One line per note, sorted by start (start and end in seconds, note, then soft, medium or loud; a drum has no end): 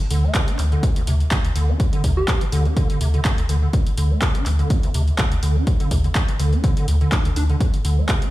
0.11 0.27 D2 loud
0.11 0.25 D3 medium
0.11 open hi-hat loud
0.24 0.36 A3 medium
0.35 0.49 C3 medium
0.35 kick loud
0.35 clap loud
0.35 closed hi-hat medium
0.48 0.60 D4 medium
0.48 closed hi-hat medium
0.59 0.76 D2 medium
0.59 0.66 D3 medium
0.59 clap soft
0.59 open hi-hat loud
0.72 0.84 D3 medium
0.72 closed hi-hat soft
0.83 0.90 D4 loud
0.83 kick loud
0.83 closed hi-hat medium
0.96 1.02 D2 medium
0.96 closed hi-hat medium
1.07 1.24 D2 loud
1.07 1.14 C3 medium
1.07 open hi-hat loud
1.20 closed hi-hat soft
1.31 1.48 D2 loud
1.31 1.36 D3 loud
1.31 kick loud
1.31 clap loud
1.31 closed hi-hat medium
1.45 closed hi-hat medium
1.55 1.72 D2 loud
1.55 1.70 D3 medium
1.55 open hi-hat loud
1.69 1.78 D4 medium
1.80 kick loud
1.80 closed hi-hat medium
1.93 2.02 D3 loud
1.93 closed hi-hat medium
2.04 2.21 D2 loud
2.04 2.11 C3 medium
2.04 kick medium
2.04 open hi-hat loud
2.17 2.21 D3 medium
2.17 2.66 G4 medium
2.28 kick loud
2.28 clap loud
2.28 closed hi-hat medium
2.41 2.45 E3 medium
2.41 closed hi-hat medium
2.52 2.69 D2 loud
2.52 2.67 D3 loud
2.52 open hi-hat loud
2.65 2.75 D4 medium
2.65 closed hi-hat soft
2.77 2.87 D3 loud
2.77 kick loud
2.77 closed hi-hat medium
2.90 2.99 D3 loud
2.90 closed hi-hat medium
3.01 3.17 D2 loud
3.01 3.08 C3 medium
3.01 open hi-hat loud
3.14 3.20 D3 loud
3.14 closed hi-hat soft
3.25 3.32 D2 medium
3.25 3.42 D2 loud
3.25 kick loud
3.25 clap loud
3.25 closed hi-hat medium
3.38 3.42 D3 medium
3.38 closed hi-hat medium
3.49 3.66 D2 loud
3.49 3.56 D3 medium
3.49 open hi-hat loud
3.62 3.68 D3 medium
3.73 kick loud
3.73 closed hi-hat medium
3.87 closed hi-hat medium
3.98 4.14 D2 medium
3.98 4.12 D3 medium
3.98 open hi-hat loud
4.11 4.23 A3 medium
4.22 4.36 C3 medium
4.22 kick loud
4.22 clap loud
4.22 closed hi-hat medium
4.35 4.47 D4 medium
4.35 closed hi-hat medium
4.46 4.63 D2 loud
4.46 4.53 D3 medium
4.46 clap soft
4.46 open hi-hat loud
4.59 4.72 D3 medium
4.59 closed hi-hat soft
4.70 4.77 D4 loud
4.70 kick loud
4.70 closed hi-hat medium
4.83 4.89 D2 medium
4.83 closed hi-hat soft
4.94 5.11 D2 loud
4.94 5.02 C3 medium
4.94 open hi-hat loud
5.08 closed hi-hat soft
5.18 5.35 D2 loud
5.18 5.23 D3 loud
5.18 kick loud
5.18 clap loud
5.18 closed hi-hat medium
5.32 closed hi-hat soft
5.43 5.59 D2 loud
5.43 5.57 D3 medium
5.43 open hi-hat loud
5.56 5.65 D4 medium
5.67 kick loud
5.67 closed hi-hat medium
5.80 5.89 D3 loud
5.80 closed hi-hat soft
5.91 6.08 D2 loud
5.91 5.98 C3 medium
5.91 kick medium
5.91 open hi-hat loud
6.04 6.08 D3 medium
6.04 closed hi-hat soft
6.15 kick loud
6.15 clap loud
6.15 closed hi-hat medium
6.28 6.32 E3 medium
6.28 closed hi-hat soft
6.40 6.56 D2 medium
6.40 6.54 D3 loud
6.40 open hi-hat loud
6.53 6.62 D4 medium
6.53 closed hi-hat soft
6.64 6.75 D3 loud
6.64 kick loud
6.64 closed hi-hat medium
6.77 6.86 D3 loud
6.77 closed hi-hat soft
6.88 7.05 D2 loud
6.88 6.95 D2 medium
6.88 open hi-hat loud
7.01 7.10 D3 loud
7.01 closed hi-hat soft
7.12 7.29 D2 medium
7.12 7.23 D4 loud
7.12 kick loud
7.12 clap loud
7.12 closed hi-hat medium
7.25 7.29 D3 loud
7.25 closed hi-hat soft
7.36 7.53 D2 loud
7.36 7.44 D4 loud
7.36 open hi-hat loud
7.49 7.56 D3 loud
7.49 closed hi-hat soft
7.61 kick loud
7.61 closed hi-hat medium
7.74 closed hi-hat soft
7.85 8.01 D2 loud
7.85 7.99 D3 medium
7.85 open hi-hat loud
7.98 8.10 A3 medium
8.09 8.23 C3 medium
8.09 kick loud
8.09 clap loud
8.09 closed hi-hat medium
8.22 8.30 D4 medium
8.22 closed hi-hat soft